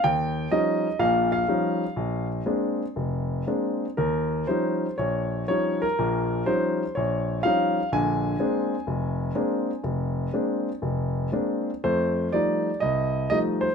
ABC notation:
X:1
M:4/4
L:1/8
Q:"Swing" 1/4=122
K:Eb
V:1 name="Grand piano"
g2 e2 f f3- | f z6 z | B2 c2 _d2 d B- | B2 c2 _d2 f2 |
a8 | z8 | c2 d2 e2 e c |]
V:2 name="Grand piano" clef=bass
E,,2 [F,G,_DE] z [B,,,B,,]2 [F,G,DE] z | B,,,2 [A,B,CD] z F,,,2 [A,B,CD] z | E,,2 [F,G,_DE] z B,,,2 [F,G,DE] z | [B,,,B,,]2 [F,G,_DE] z B,,,2 [F,G,DE] z |
[B,,,D,]2 [A,B,CD] z F,,,2 [A,B,CD] z | F,,,2 [A,B,CD] z F,,,2 [A,B,CD] z | [F,,=A,]2 [F,G,A,E] z C,,2 [F,G,A,E] z |]